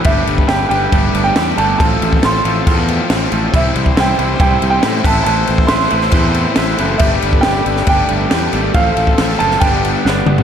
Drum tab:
CC |x-x-x-x-x-x-x-x-|x-x-x-x-x-x-x-x-|x-x-x-x-x-x-x-x-|x-x-x-x-x-x-x-x-|
SD |----o-------o---|----o-------o---|----o-------o---|----oo-o----o---|
T2 |----------------|----------------|----------------|----------------|
FT |----------------|----------------|----------------|----------------|
BD |o--o----o-------|o--o----o-------|o--o----o-----o-|---o----o-------|

CC |x-x-x-x-x-x-x-x-|x-x-x-x-x-x-----|
SD |----oo-o----o---|----oo-o----o---|
T2 |----------------|--------------o-|
FT |----------------|---------------o|
BD |o--o----o-------|o--o----o-------|